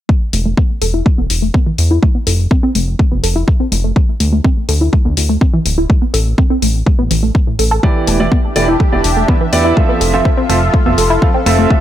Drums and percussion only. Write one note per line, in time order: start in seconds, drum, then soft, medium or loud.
0.09 kick loud
0.33 open hi-hat medium
0.57 kick loud
0.82 open hi-hat medium
1.06 kick loud
1.30 open hi-hat medium
1.54 kick loud
1.78 open hi-hat medium
2.03 kick loud
2.27 open hi-hat loud
2.51 kick loud
2.75 open hi-hat medium
2.99 kick loud
3.24 open hi-hat loud
3.48 kick loud
3.72 open hi-hat medium
3.96 kick loud
4.20 open hi-hat loud
4.44 kick loud
4.69 open hi-hat medium
4.93 kick loud
5.17 open hi-hat loud
5.41 kick loud
5.66 open hi-hat medium
5.90 kick loud
6.14 open hi-hat loud
6.38 kick loud
6.62 open hi-hat medium
6.86 kick loud
7.11 open hi-hat loud
7.35 kick loud
7.59 open hi-hat medium
7.83 kick loud
8.07 open hi-hat medium
8.32 kick loud
8.56 open hi-hat medium
8.80 kick loud
9.04 open hi-hat medium
9.28 kick loud
9.53 open hi-hat medium
9.77 kick loud
10.01 open hi-hat medium
10.25 kick loud
10.50 open hi-hat medium
10.74 kick loud
10.98 open hi-hat loud
11.22 kick loud
11.46 open hi-hat medium
11.70 kick loud